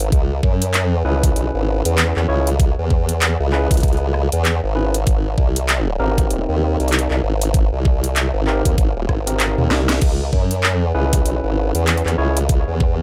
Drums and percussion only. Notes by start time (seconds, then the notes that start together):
0.12 kick, closed hi-hat
0.43 kick
0.62 closed hi-hat
0.74 clap, closed hi-hat
1.23 kick, closed hi-hat
1.36 closed hi-hat
1.85 closed hi-hat
1.98 clap, closed hi-hat
2.16 clap
2.47 closed hi-hat
2.60 kick, closed hi-hat
2.90 kick
3.09 closed hi-hat
3.22 clap, closed hi-hat
3.52 clap
3.71 kick, closed hi-hat
3.74 closed hi-hat
3.77 closed hi-hat
3.80 kick, closed hi-hat
3.83 closed hi-hat
3.88 closed hi-hat
3.93 closed hi-hat
3.97 closed hi-hat
4.14 cross-stick
4.32 closed hi-hat
4.45 clap, closed hi-hat
4.94 closed hi-hat
5.07 kick, closed hi-hat
5.38 kick
5.56 closed hi-hat
5.69 clap, closed hi-hat
6.18 kick, closed hi-hat
6.31 closed hi-hat
6.80 closed hi-hat
6.88 closed hi-hat
6.92 clap, closed hi-hat
6.99 closed hi-hat
7.11 clap
7.42 closed hi-hat
7.54 kick, closed hi-hat
7.85 kick
8.04 closed hi-hat
8.16 clap, closed hi-hat
8.47 clap
8.65 kick, closed hi-hat
8.78 kick, closed hi-hat
9.09 kick, cross-stick
9.27 closed hi-hat
9.40 clap, closed hi-hat
9.58 high tom
9.71 snare
9.89 snare, closed hi-hat
10.01 kick, closed hi-hat, crash
10.33 kick
10.51 closed hi-hat
10.63 clap
11.13 kick, closed hi-hat
11.26 closed hi-hat
11.75 closed hi-hat
11.87 clap, closed hi-hat
11.98 closed hi-hat
12.06 clap, closed hi-hat
12.37 closed hi-hat
12.49 kick, closed hi-hat
12.80 kick